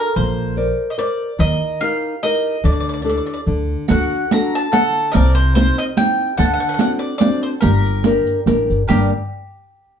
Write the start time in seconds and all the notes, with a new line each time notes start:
0.00 A#4
0.16 A#1 A#3 C5
0.57 A#4 C5 D5
0.90 D#5
0.98 A#4 C5 D5
1.38 D#2 D#3 D#5
1.81 D#4 G4 A#4 F5
2.23 D#4 G4 A#4 D#5
2.64 D2 D3 D5
2.72 D5
2.80 D5
2.89 D5
2.94 D5
3.02 D4 G4 A4 D5
3.09 D5
3.17 D5
3.26 D5
3.34 D5
3.47 D2 D3
3.88 D2 D4 F#4 A4 F#5, riq
4.31 D4 F#4 A4 A#5, riq
4.55 A5
4.72 D3 A4 F#5, riq
5.12 C2 C3 A#4 D5 D#5, riq
5.35 C5
5.55 C4 D#4 G4 C5, riq
5.78 D#5
5.97 C4 D#4 G4 G5, riq
6.38 D2 D3 A4 F#5, riq
6.45 F#5
6.54 F#5
6.60 F#5
6.69 F#5
6.74 F#5
6.79 C4 D4 F#4 F#5, riq
6.99 D5
7.18 C4 D4 F#4 D5, riq
7.43 C5
7.61 G1 G3 G4 A#4, riq
7.86 riq
8.04 D4 G4 A#4, riq
8.27 riq
8.46 A1 D4 G4 A#4, riq
8.70 G1, riq
8.88 G1 G2 D3 G3 A#3 D4 G4 A#4, riq